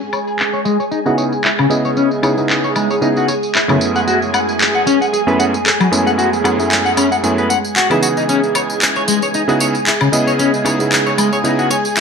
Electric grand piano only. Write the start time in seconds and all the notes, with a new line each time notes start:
1.05 C#3 B3 D#4 E4 G#4
1.70 C#3 B3 E4 G#4 D#5
2.23 C#3 B3 D#4 E4 G#4
2.36 C#3 B3 D#4 E4 G#4
3.01 C#3 B3 D#4 E4 G#4
3.68 F#2 A3 B3 C#4 E4 G#4
5.27 F#2 A3 B3 C#4 E4 G#4
5.91 F#2 A3 B3 C#4 E4 G#5
6.44 F#2 A3 B3 C#4 E4 G#4
6.58 F#2 A3 B3 C#4 E4 G#4
7.23 F#2 A3 B3 C#4 E4 G#4
7.90 C#3 E3 B3 D#4 G#4
9.48 C#3 B3 D#4 E4 G#4
10.12 C#3 B3 E4 G#4 D#5
10.64 C#3 B3 D#4 E4 G#4
10.79 C#3 B3 D#4 E4 G#4
11.44 C#3 B3 D#4 E4 G#4